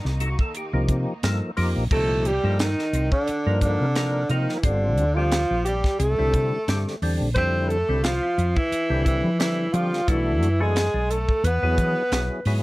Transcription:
Already playing: D#3 A#3 D#4
0.05 C2 D#4 G4, snare
0.20 D#4 F#4 A4, closed hi-hat
0.39 A4, kick
0.55 G4, closed hi-hat
0.73 C2 F3 A#3 D#4 G4
0.89 C3, kick, closed hi-hat
1.23 G2 F3 A#3 D#4 A4, snare, closed hi-hat
1.57 F2 F3 A#3 D#4 G4, open hi-hat
1.76 A#1
1.91 C2 A#2 F3 A3 D#4 G4 A4, kick, crash
2.25 G3 G4, closed hi-hat
2.44 G2 F3 A#3 D#4 A4
2.59 D#3 D#4, snare, closed hi-hat
2.79 D#4 A4, snare
2.93 C2 D#4 F4, closed hi-hat
3.12 D3 D4, kick
3.28 muted fretless electric bass stroke, closed hi-hat
3.46 G2 F3 A#3 D#4 A#4
3.61 D3 D4, kick, closed hi-hat
3.81 C3
3.95 F3 A#3 D#4 A#4, snare, closed hi-hat
4.29 C3 D#3 F3 A#3 D#4 A#4, closed hi-hat
4.49 snare
4.57 E3 E4
4.63 G1 D3 G3 C4 D4 F4, kick, closed hi-hat
4.98 D2, closed hi-hat
5.15 D3 F3 G3 C4 F4 G4
5.32 snare, closed hi-hat
5.50 A#1 C4 G4
5.65 G3 C4 D4 G4, closed hi-hat
5.84 kick, snare
5.99 C2 A3 A4, closed hi-hat
6.18 C2 D3 G3 C4 E4
6.34 C3, kick, closed hi-hat
6.68 G2 D3 G3 C4 G4, snare, closed hi-hat
6.88 snare
7.02 E2 D3 G3 C4 D4, open hi-hat
7.21 A#1
7.34 F2 D3 G3 C4 E4 C5, kick, closed hi-hat
7.68 A3 A4, closed hi-hat
7.89 C2 D3 G3 C4 E4
8.03 F3 F4, snare, closed hi-hat
8.22 C4 E4
8.38 F2 C4 E4, closed hi-hat
8.56 E3 E4, kick
8.72 muted fretless electric bass stroke, closed hi-hat
8.90 C2 D3 G3 C4 E4
9.04 E3 E4, kick, closed hi-hat
9.24 F3
9.39 D3 E3 G3 C4 E4, snare, closed hi-hat
9.73 D3 F3 G3 C4 F4 G4, closed hi-hat
9.93 snare
10.07 B1 E3 A3 D4 E4 F#4, kick, closed hi-hat
10.41 F#2, closed hi-hat
10.60 E3 G#3 A3 D4 F#4 G#4
10.76 snare, closed hi-hat
10.94 B1 D4 G#4
11.10 A3 D4 A4, closed hi-hat
11.29 kick
11.44 E2 B3 B4, closed hi-hat
11.62 E2 F#3 B3 E4 G#4
11.78 E3, kick, closed hi-hat
12.12 B1 F#3 B3 E4 G#4, snare, closed hi-hat
12.45 G#2 F#3 B3 E4 G#4, open hi-hat

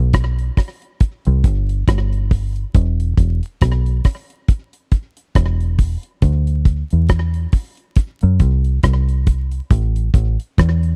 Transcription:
Already playing: B1
0.13 kick, cross-stick, closed hi-hat
0.39 closed hi-hat
0.57 kick, cross-stick, open hi-hat
0.82 closed hi-hat
1.00 kick, closed hi-hat
1.25 C2, closed hi-hat
1.44 G1, kick, closed hi-hat
1.69 closed hi-hat
1.88 G1, kick, cross-stick, closed hi-hat
2.13 closed hi-hat
2.31 kick, open hi-hat
2.56 closed hi-hat
2.74 E1, kick, closed hi-hat
3.00 closed hi-hat
3.17 E1, kick, closed hi-hat
3.43 closed hi-hat
3.61 B1, kick, cross-stick, closed hi-hat
3.86 closed hi-hat
4.04 kick, cross-stick, open hi-hat
4.30 closed hi-hat
4.48 kick, closed hi-hat
4.73 closed hi-hat
4.92 kick, closed hi-hat
5.17 closed hi-hat
5.35 E1, kick, cross-stick, closed hi-hat
5.61 closed hi-hat
5.79 kick, open hi-hat
6.03 closed hi-hat
6.22 D2, kick, closed hi-hat
6.47 closed hi-hat
6.65 kick, closed hi-hat
6.90 E2, closed hi-hat
7.09 kick, cross-stick, closed hi-hat
7.34 closed hi-hat
7.52 kick, open hi-hat
7.77 closed hi-hat
7.96 kick, closed hi-hat
8.21 F#2, closed hi-hat
8.39 C2, kick, closed hi-hat
8.64 closed hi-hat
8.83 C2, kick, cross-stick, closed hi-hat
9.09 closed hi-hat
9.27 kick, closed hi-hat
9.51 closed hi-hat
9.70 A1, kick, closed hi-hat
9.96 closed hi-hat
10.14 A1, kick, closed hi-hat
10.40 closed hi-hat
10.58 E2, kick, cross-stick, closed hi-hat
10.83 closed hi-hat

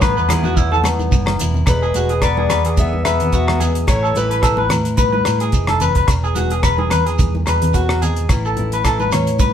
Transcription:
Already playing: A1 A2 E3 A3 B3 E4
0.01 E3 B4, kick, cross-stick, high conga, low agogo, shekere
0.17 E2 B4, shekere
0.29 E4 G#4, cross-stick, closed hi-hat, high conga, low conga, low agogo, shekere
0.44 F#4, high conga, shekere
0.57 E2 E4, kick, shekere
0.71 A4, low conga, shekere
0.84 B3, cross-stick, closed hi-hat, high conga, low agogo, shekere
0.99 high conga, shekere
1.11 F#1 E3, kick, high conga, shekere
1.26 cross-stick, high conga, low agogo
1.39 E1 E4, closed hi-hat, low conga, shekere
1.54 low conga, shekere
1.66 E1 E2 G#3 B3 B4, kick, cross-stick, closed hi-hat, low agogo, shekere
1.82 G#4, shekere
1.94 E1 F#4 G#4, closed hi-hat, high conga, shekere
2.09 G#4, closed hi-hat, shekere
2.22 E3 B3 B4 D5, muted nylon-string guitar stroke, kick, cross-stick, closed hi-hat, low agogo, shekere
2.37 G#4, high conga
2.49 E2 G#4 B4, cross-stick, closed hi-hat, low conga, low agogo, shekere
2.65 G#4, closed hi-hat, shekere
2.77 G#3 B3 E5, kick, closed hi-hat, high conga, shekere
2.93 high conga
3.05 E2 B2 B3 G#4 B4 E5, cross-stick, closed hi-hat, low agogo, shekere
3.20 closed hi-hat, low conga, shekere
3.32 E2 B3 F#4, kick, closed hi-hat, shekere
3.48 cross-stick, high conga, low agogo
3.60 G#3 G#4, closed hi-hat, low conga, shekere
3.75 closed hi-hat, shekere
3.87 A1 A2 A3 E4 C#5, kick, cross-stick, closed hi-hat, low agogo, shekere
4.03 A4, shekere
4.15 A1 E3 E4 B4, closed hi-hat, high conga, shekere
4.31 B4, closed hi-hat, shekere
4.42 E3 A4, kick, cross-stick, closed hi-hat, low agogo, shekere
4.57 B4, high conga
4.69 A2 E4, cross-stick, closed hi-hat, low conga, low agogo, shekere
4.85 closed hi-hat, shekere
4.97 B3 B4, kick, closed hi-hat, high conga, shekere
5.13 B4, high conga
5.25 E2 A2 E4, cross-stick, closed hi-hat, low agogo, shekere
5.40 G#4, closed hi-hat, shekere
5.52 F1 G#2, kick, closed hi-hat, shekere
5.67 A4, cross-stick, high conga, low agogo
5.80 F#2 B4, closed hi-hat, low conga, shekere
5.95 B4, kick, closed hi-hat, shekere
6.07 E1 E2 B3, kick, cross-stick, closed hi-hat, low agogo, shekere
6.24 G#4, shekere
6.35 E1 F#4 G#4, closed hi-hat, high conga, shekere
6.50 G#4, closed hi-hat, shekere
6.63 E3 B3 B4, kick, cross-stick, closed hi-hat, low agogo, shekere
6.78 G#4, high conga
6.90 E2 B4, cross-stick, closed hi-hat, low conga, low agogo, shekere
7.06 G#4, closed hi-hat, shekere
7.19 muted nylon-string guitar stroke, kick, closed hi-hat, high conga, shekere
7.35 high conga
7.46 E2 B2 G#4 B4, cross-stick, closed hi-hat, low agogo, shekere
7.62 closed hi-hat, low conga, shekere
7.74 E2 F#2 F#4, kick, closed hi-hat, shekere
7.89 cross-stick, low agogo
8.01 G#2 G#4, closed hi-hat, low conga, shekere
8.16 closed hi-hat, shekere
8.29 A1 A2 E3 B3 E4, kick, cross-stick, closed hi-hat, low agogo, shekere
8.45 A4, shekere
8.57 A1 E4, closed hi-hat, high conga
8.72 B4, closed hi-hat, shekere
8.85 E3 E4 A4, kick, cross-stick, closed hi-hat, low agogo, shekere
8.99 B4, high conga, shekere
9.12 A2 E4 C#5, cross-stick, closed hi-hat, low conga, low agogo, shekere
9.27 closed hi-hat, shekere
9.39 B3 B4, kick, closed hi-hat, high conga, shekere

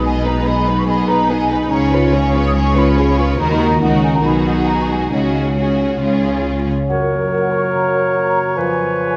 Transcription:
Already playing: B1 B2 G#3 D#4 G#4
0.04 B2 B3 G#4 D#5 G#5
0.25 D#4 G#4 B4 A#5
0.46 B3 D#4 G#4 D#5 B5
0.67 B3 D#4 B4
0.77 C#6
0.87 B2 B3 G#4 D#5 B5
1.07 D#4 G#4 B4 A#5
1.29 B3 D#4 G#4 D#5 G#5
1.50 B3 D#4 B4 G#5
1.71 C#2 C#3 C#4 G#4 C#5 A#5
1.92 F4 G#4 B4 C#5 B5
2.12 C#4 F4 G#4 C#5 C#6
2.34 B3 F4 B4 C#5
2.46 D#6
2.54 G#3 C#4 G#4 C#5 C#6
2.76 F4 G#4 B4 C#5 B5
2.97 C#4 F4 G#4 C#5 B5
3.17 B3 F4 B4 C#5 C#6
3.38 D#2 D#3 D#4 F#4 A#4 A#5
3.51 B5
3.61 A#4 A#5
3.81 C#2 C#3 D#4 F#4 A#4 F#5
4.02 D#4 G#5
4.13 A#5
4.23 B1 B2 D#4 F#4 G#4 B5
4.45 F#4 F#5
4.66 D#4 A#5
4.89 G#3 G#5
5.12 C#2 C#3 C#4 F#4 G#4 D#5
5.36 G#4
5.56 C#4 F#4 G#4 C#5
5.81 C#4
6.01 C#2 C#3 C#4 F4 G#4
6.25 G#4
6.46 F4
6.69 C#4
6.88 F#2 F#3 A#4 C#5 F#5
7.11 A#3
7.33 F#4
7.51 C#5 C#6
7.73 C#3 A#5
7.95 A#3
8.16 F#4
8.37 C#5
8.56 F2 F3 B4 G#5
8.78 B3
8.99 G#4

